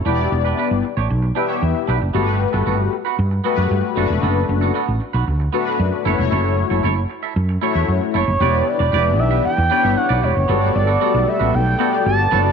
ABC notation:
X:1
M:4/4
L:1/16
Q:1/4=115
K:Edor
V:1 name="Analog synth lead"
z16 | z16 | z16 | z12 z2 c2- |
c2 d4 e2 g4 f2 c2- | c2 d4 e2 g4 a4 |]
V:2 name="Clean electric guitar"
[DGB]2 z [DGB] [DGB] z2 [DGc] z2 [DGB] [DGc] z2 [DGB] z | [B,FA]2 z [B,FA] [B,FA] z2 [B,FB] z2 [B,FA] [B,FB] z2 [B,FA] z | [B,FA]2 z [B,FA] [B,FA] z2 [B,FB] z2 [B,FA] [B,FB] z2 [EAc] z | [EAc]2 z [EAc] [EAc] z2 [EAe] z2 [EAc] [EAe] z2 [EAc] z |
[GBd]2 z [GBd] [GBd] z2 [GBe] z2 [GBd] [GBe] z [GBd] [GBd] z | [B,FA]2 z [B,FA] [B,FA] z2 [B,FB] z2 [B,FA] z3 [B,FA] z |]
V:3 name="Analog polysynth"
[B,EGd]6 z4 [B,EGe]4 z2 | [A,FGB]6 z4 [A,FGB]4 [A,DFB]2- | [A,DFB]4 z6 [A,DFB]4 [A,EFBc]2- | [A,EFBc]4 z6 [A,EFc]4 z2 |
[B,DEGd]3 z [B,DEGd]4 z2 [B,DEGc]4 z2 | [B,FGAd]3 z [B,FGAd]4 z2 [B,FGAd]4 [B,DFAcd]2 |]
V:4 name="Analog synth pad"
z16 | z16 | z16 | z16 |
[E,B,DG]16 | [G,A,B,A]12- [G,A,B,A]2 [D,A,B,F]2 |]
V:5 name="Fretless electric bass" clef=bass
E,,,2 E,,,2 z G,,, z A,,, B,,,2 z2 E,, z B,,, F,,, | G,,,3 G,,, G,,,2 z2 G,,2 z F,, G,, z F,,, E,,, | F,,,2 F,,,2 z A,,, z B,,, D,,2 z2 F,, z F,,, E,,, | F,,,3 F,,, F,,,2 z2 F,,2 z E,, F,, z F,,, F,,, |
E,,,2 z E,,, E,,,2 B,,,2 z E,, z G,,, z B,,, E,,, F,,, | G,,,2 G,,,2 z B,,, z A,,, B,,,2 z2 G,,,2 F,,,2 |]